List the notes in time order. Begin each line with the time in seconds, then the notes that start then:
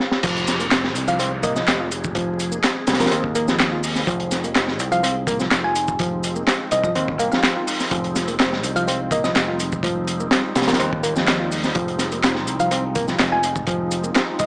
Already playing: swell
0.11 snare
0.23 F1 F3 G#3 C4 D#4 G#4, kick, closed hi-hat, crash, downlifter, shaker
0.36 closed hi-hat
0.47 snare, closed hi-hat, shaker
0.60 A#3, closed hi-hat, shaker
0.71 C4, snare, clap, closed hi-hat, shaker
0.84 snare
0.95 C2, closed hi-hat, shaker
1.08 F3 F5, closed hi-hat, shaker
1.19 C4, closed hi-hat, shaker
1.43 A#3 D#5, kick, closed hi-hat, shaker
1.56 F3 D#5, snare, shaker
1.67 F1, snare, clap, closed hi-hat, shaker
1.80 F4
1.91 closed hi-hat, shaker
2.04 kick, shaker
2.15 F3, kick, closed hi-hat, shaker
2.39 closed hi-hat, shaker
2.52 A#3, shaker
2.63 C4, snare, clap, closed hi-hat, shaker
2.87 C2, snare, closed hi-hat, shaker
2.93 snare, closed hi-hat
3.00 F3 A#4, snare, closed hi-hat, shaker
3.06 snare, closed hi-hat
3.11 D#2 C4, closed hi-hat, shaker
3.24 kick
3.35 A#3, closed hi-hat, shaker
3.48 F3, snare, shaker
3.59 snare, clap, closed hi-hat, shaker
3.72 F4
3.83 open hi-hat, shaker
3.96 snare, shaker
4.07 F1 F3, kick, closed hi-hat, shaker
4.20 closed hi-hat
4.31 snare, closed hi-hat, shaker
4.44 A#3, closed hi-hat, shaker
4.55 C4, snare, clap, closed hi-hat, shaker
4.68 snare
4.79 C2, closed hi-hat, shaker
4.92 F3 F5, closed hi-hat, shaker
5.03 C4, closed hi-hat, shaker
5.27 A#3, kick, closed hi-hat, shaker
5.40 F3, snare, shaker
5.51 F1, snare, clap, closed hi-hat, shaker
5.64 F4 G#5
5.75 closed hi-hat, shaker
5.88 kick, shaker
5.99 F3, kick, closed hi-hat, shaker
6.24 closed hi-hat, shaker
6.36 A#3, shaker
6.47 C4, snare, clap, closed hi-hat, shaker
6.71 C2 D#5, closed hi-hat, shaker
6.84 F3 D#5, kick, shaker
6.95 D#2 C4, closed hi-hat, shaker
7.08 kick
7.19 C2 A#3 F5, closed hi-hat, shaker
7.32 F3 F5, snare, shaker
7.43 snare, clap, closed hi-hat, shaker
7.56 F4
7.67 open hi-hat, shaker
7.80 snare, shaker
7.91 F1 F3 G3, kick, closed hi-hat, shaker
8.04 closed hi-hat
8.15 snare, closed hi-hat, shaker
8.28 A#3, closed hi-hat, shaker
8.39 C4, snare, clap, closed hi-hat, shaker
8.53 snare
8.63 C2, closed hi-hat, shaker
8.76 F3 F5, closed hi-hat, shaker
8.88 C4, closed hi-hat, shaker
9.11 A#3 D#5, kick, closed hi-hat, shaker
9.24 F3 D#5, snare, shaker
9.35 F1, snare, clap, closed hi-hat, shaker
9.48 F4
9.60 closed hi-hat, shaker
9.72 kick, shaker
9.83 F3, kick, closed hi-hat, shaker
10.07 closed hi-hat, shaker
10.20 A#3, shaker
10.31 C4, snare, clap, closed hi-hat, shaker
10.55 C2, snare, closed hi-hat, shaker
10.62 snare, closed hi-hat
10.68 F3 A#4, snare, closed hi-hat, shaker
10.73 snare, closed hi-hat
10.79 D#2 C4, closed hi-hat, shaker
10.93 kick
11.03 A#3, closed hi-hat, shaker
11.16 F3, snare, shaker
11.27 snare, clap, closed hi-hat, shaker
11.40 F4
11.52 open hi-hat, shaker
11.64 snare, shaker
11.75 F1 F3, kick, closed hi-hat, shaker
11.88 closed hi-hat
11.99 snare, closed hi-hat, shaker
12.12 A#3, closed hi-hat, shaker
12.23 C4, snare, clap, closed hi-hat, shaker
12.35 snare
12.47 C2, closed hi-hat, shaker
12.59 F3 F5, closed hi-hat, shaker
12.71 C4, closed hi-hat, shaker
12.95 A#3, kick, closed hi-hat, shaker
13.08 F3, snare, shaker
13.19 F1, snare, clap, closed hi-hat, shaker
13.32 F4 G#5
13.43 closed hi-hat, shaker
13.56 kick, shaker
13.67 F3, kick, closed hi-hat, shaker
13.91 closed hi-hat, shaker
14.04 A#3, shaker
14.15 C4, snare, clap, closed hi-hat, shaker
14.39 C2 D#5, kick, closed hi-hat, shaker